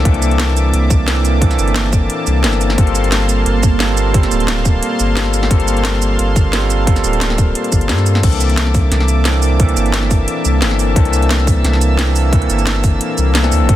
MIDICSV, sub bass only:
0, 0, Header, 1, 2, 480
1, 0, Start_track
1, 0, Tempo, 340909
1, 76, Time_signature, 4, 2, 24, 8
1, 19373, End_track
2, 0, Start_track
2, 0, Title_t, "Sub bass"
2, 0, Program_c, 0, 38
2, 74, Note_on_c, 0, 36, 100
2, 1017, Note_off_c, 0, 36, 0
2, 1035, Note_on_c, 0, 36, 96
2, 2217, Note_off_c, 0, 36, 0
2, 2236, Note_on_c, 0, 31, 106
2, 2938, Note_off_c, 0, 31, 0
2, 3197, Note_on_c, 0, 36, 86
2, 3437, Note_on_c, 0, 31, 82
2, 3458, Note_off_c, 0, 36, 0
2, 3898, Note_off_c, 0, 31, 0
2, 3915, Note_on_c, 0, 31, 100
2, 4857, Note_off_c, 0, 31, 0
2, 4875, Note_on_c, 0, 31, 97
2, 6057, Note_off_c, 0, 31, 0
2, 6075, Note_on_c, 0, 26, 106
2, 6777, Note_off_c, 0, 26, 0
2, 7038, Note_on_c, 0, 31, 89
2, 7739, Note_off_c, 0, 31, 0
2, 7754, Note_on_c, 0, 31, 100
2, 8697, Note_off_c, 0, 31, 0
2, 8722, Note_on_c, 0, 31, 98
2, 9900, Note_off_c, 0, 31, 0
2, 9917, Note_on_c, 0, 26, 107
2, 10618, Note_off_c, 0, 26, 0
2, 10876, Note_on_c, 0, 31, 88
2, 11115, Note_on_c, 0, 43, 84
2, 11136, Note_off_c, 0, 31, 0
2, 11577, Note_off_c, 0, 43, 0
2, 11595, Note_on_c, 0, 36, 100
2, 12537, Note_off_c, 0, 36, 0
2, 12553, Note_on_c, 0, 36, 96
2, 13736, Note_off_c, 0, 36, 0
2, 13755, Note_on_c, 0, 31, 104
2, 14457, Note_off_c, 0, 31, 0
2, 14715, Note_on_c, 0, 36, 88
2, 14952, Note_on_c, 0, 31, 83
2, 14973, Note_off_c, 0, 36, 0
2, 15416, Note_off_c, 0, 31, 0
2, 15432, Note_on_c, 0, 36, 102
2, 16376, Note_off_c, 0, 36, 0
2, 16394, Note_on_c, 0, 36, 96
2, 17577, Note_off_c, 0, 36, 0
2, 17601, Note_on_c, 0, 31, 105
2, 18300, Note_off_c, 0, 31, 0
2, 18559, Note_on_c, 0, 36, 88
2, 19026, Note_off_c, 0, 36, 0
2, 19035, Note_on_c, 0, 38, 90
2, 19162, Note_on_c, 0, 34, 97
2, 19183, Note_off_c, 0, 38, 0
2, 19265, Note_off_c, 0, 34, 0
2, 19274, Note_on_c, 0, 31, 100
2, 19373, Note_off_c, 0, 31, 0
2, 19373, End_track
0, 0, End_of_file